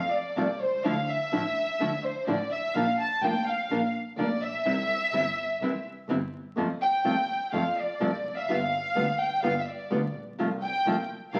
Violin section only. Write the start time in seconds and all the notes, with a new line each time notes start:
Already playing: F5
0.14 D5
0.61 C5
0.84 F5
1.09 E5
2.05 C5
2.28 D5
2.51 E5
2.75 F5
3.00 A5
3.23 G5
3.47 F5
4.18 D5
4.42 E5
6.82 G5
7.54 F5
7.78 D5
8.34 E5 F5
8.49 F5
9.19 G5
9.42 F5
9.59 E5
9.66 D5
10.62 G5
11.33 F5